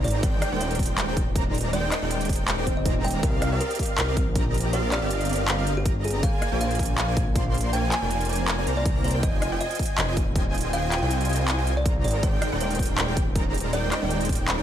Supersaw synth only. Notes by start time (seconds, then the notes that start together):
Already playing: G#3 D#4 A#4 C5 D5 A#5
0.23 G#3 D#4 A#4 C5 D5 G5
0.52 G#3 D#4 A#4 C5 D5 G5
0.79 G#3 D5
1.08 G#3 D#4 A#4 C5 D5 G5
1.36 G#3 D#4 A#4 C5 D5 A#5
1.73 G#3 D#4 A#4 C5 D5 G5
2.02 G#3 D#4 A#4 C5 D5 G5
2.29 G#3 D#4 A#4 C5 D5 G5
2.58 G#3 D#4 A#4 C5 D5 G5
2.86 G#3 D#4 A#4 C5 D5 A#5
3.23 C4 G4 A#4 D#5 F5
3.52 C4 G4 A#4 D5 D#5 F5
3.79 C4 G4 A#4 D5 D#5 F5
4.08 C4 G4 A#4 D5 D#5 F5
4.35 C4 G4 A#4 D5 D#5 A#5
4.73 C4 G4 A#4 D5 D#5 F5
5.02 C4 G4 A#4 D5 D#5 F5
5.29 C4 G4 A#4 D5 D#5 F5
5.58 C4 G4 A#4 D5 D#5 F5
5.85 C4 G4 A#4 D5 D#5 A#5
6.23 A#3 A#4 C5 D5 G#5
6.52 A#3 A#4 C5 D5 G#5
6.79 A#3 A#4 C5 D5
7.08 A#3 A#4 C5 D5 G#5
7.35 A#3 A#4 C5 D5 C6
7.73 A#3 A#4 C5 D5 G#5
8.02 A#3 A#4 C5 D5 G#5
8.29 A#3 A#4 C5 D5 G#5
8.58 A#3 A#4 C5 D5 G#5
8.67 A#3 A#4 C5 D5 A#5
8.85 A#3 A#4 C5 A#5
9.14 A#3 A#4 C5 D5 G5
9.23 F4 C5 D#5 G5 G#5
9.52 F4 C5 D#5 G5 G#5
9.79 F4 C5 G5 G#5
10.08 F4 C5 D#5 G5 G#5
10.36 F4 C5 D#5 G5 G#5
10.73 F4 C5 D#5 G5 G#5
11.02 F4 C5 D#5 G5 G#5
11.29 F4 C5 D#5 G5 G#5
11.58 F4 C5 D#5 G5 G#5
11.86 G#3 D#4 A#4 C5 D5 A#5
12.23 G#3 D#4 A#4 C5 D5 G5
12.52 G#3 D#4 A#4 C5 D5 G5
12.79 G#3 D#4 A#4 C5 D5 G5
13.08 G#3 D#4 A#4 C5 D5 G5
13.35 G#3 D#4 A#4 C5 D5 A#5
13.73 G#3 D#4 A#4 C5 D5 G5
14.02 G#3 D#4 A#4 C5 D5 G5
14.29 G#3 D#4 G5
14.58 G#3 D#4 A#4 C5 D5 G5